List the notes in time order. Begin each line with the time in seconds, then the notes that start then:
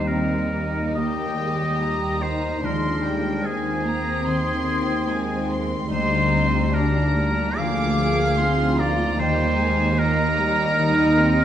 Already playing: D#2 D#3 G3 A#3 G4
0.06 C4 D#4 F4 A#4
0.37 G4
0.50 A#3
0.67 D#4
0.95 D#3 G3 A#3 G4 D#5 G5
1.26 A#3
1.39 G#3
1.54 G4
1.81 G3 F4 A#5
2.09 G4
2.21 D#3 D#4 C5
2.36 D#4
2.63 D#2 D#3 F3 G#3 D4 A#4 C6
2.92 D#4
3.04 G3 G5
3.19 F4
3.44 G#3 C4 D#4 G#4 G#5
3.72 F4
3.86 A#3 A#5
3.99 C4
4.26 D#3 C4 C6
4.53 D#4
4.81 F4
5.09 G#3 D#4 G#5
5.36 F4
5.51 C6
5.64 C4
5.91 D2 D3 G3 A#3 D#4 C5
6.19 G#3
6.33 C4
6.46 F4
6.73 D4 D#4 A#4 A#5
7.01 F4
7.16 A#3
7.30 A#3
7.57 D3 F3 G#4 F5 D6
7.86 G#3
8.12 F4
8.38 F3 C4 D#4 C6
8.65 F4
8.78 A#3 F4 D5 A#5
8.92 A#3
9.19 D#2 D#3 G3 A#3 D#4 C5 G5
9.46 A#3
9.59 G#3 G#5
9.72 G4
9.98 A#3 D#4 F4 A#4 A#5
10.25 G4
10.39 G3
10.52 D#4
10.79 D#3 G3 D#4
11.06 A#3
11.18 C4
11.32 G4